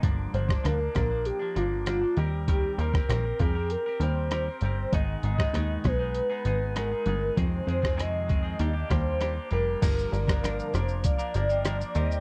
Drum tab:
CC |----------------|----------------|----------------|----------------|
HH |x-x-x-x-x-x-x-x-|x-x-x-x-x-x-x-x-|x-x-x-x-x-x-x-x-|x-x-x-x-x-x-x-x-|
SH |----------------|----------------|----------------|----------------|
SD |---rr-r-----r---|---rr-------r---|---rr-r-----r---|---rr-----r-r---|
BD |o--o--o---------|o--o--o---------|o--o--o---------|o--o--o---o-----|

CC |x---------------|
HH |x-x-x-x-x-x-x-x-|
SH |xxxxxxxxxxxxxxxx|
SD |---rr-r-----r---|
BD |o--o----o-------|